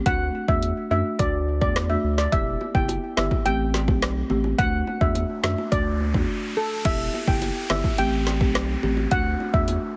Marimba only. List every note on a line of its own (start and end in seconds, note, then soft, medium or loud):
0.06 0.45 A3 medium
0.06 0.45 D4 medium
0.06 0.45 F#4 loud
0.48 0.66 A3 medium
0.48 0.66 D4 medium
0.48 0.66 F#4 medium
0.91 1.08 A3 medium
0.91 1.08 D4 medium
0.91 1.09 F#4 medium
1.19 1.36 A3 medium
1.19 1.37 D4 medium
1.19 1.37 F#4 loud
1.61 1.79 A3 medium
1.61 1.79 D4 medium
1.61 1.79 F#4 medium
1.90 2.07 A3 medium
1.90 2.07 D4 medium
1.90 2.07 F#4 medium
2.32 2.71 B3 medium
2.32 2.71 E4 medium
2.32 2.71 G4 loud
2.75 2.92 B3 medium
2.75 2.92 E4 medium
2.75 2.92 G4 medium
3.17 3.34 B3 medium
3.17 3.35 E4 medium
3.17 3.35 G4 medium
3.45 3.63 A3 medium
3.45 3.63 C4 medium
3.45 3.63 G4 loud
3.88 4.27 A3 medium
3.88 4.27 C4 medium
3.88 4.27 G4 medium
4.30 4.56 A3 medium
4.30 4.56 C4 medium
4.30 4.57 G4 medium
4.58 4.98 A3 loud
4.58 4.98 D4 medium
4.58 4.98 F#4 loud
5.01 5.18 A3 medium
5.01 5.18 D4 medium
5.01 5.19 F#4 medium
5.43 5.61 A3 medium
5.43 5.61 D4 medium
5.43 5.61 F#4 medium
5.71 5.89 A3 loud
5.71 5.89 D4 medium
5.71 5.89 F#4 loud
6.14 6.28 A3 medium
6.14 6.28 D4 medium
6.14 6.29 F#4 medium
6.85 7.24 B3 medium
6.85 7.24 E4 medium
6.85 7.24 G4 loud
7.27 7.45 B3 medium
7.27 7.45 E4 medium
7.27 7.45 G4 medium
7.70 7.87 B3 medium
7.70 7.87 E4 medium
7.70 7.88 G4 medium
7.98 8.16 A3 medium
7.98 8.16 C4 medium
7.98 8.16 G4 loud
8.41 8.80 A3 medium
8.41 8.80 C4 medium
8.41 8.80 G4 medium
8.83 9.09 A3 medium
8.83 9.09 C4 medium
8.83 9.09 G4 medium
9.11 9.50 A3 medium
9.11 9.50 D4 medium
9.11 9.51 F#4 loud
9.53 9.71 A3 medium
9.53 9.71 D4 medium
9.53 9.72 F#4 medium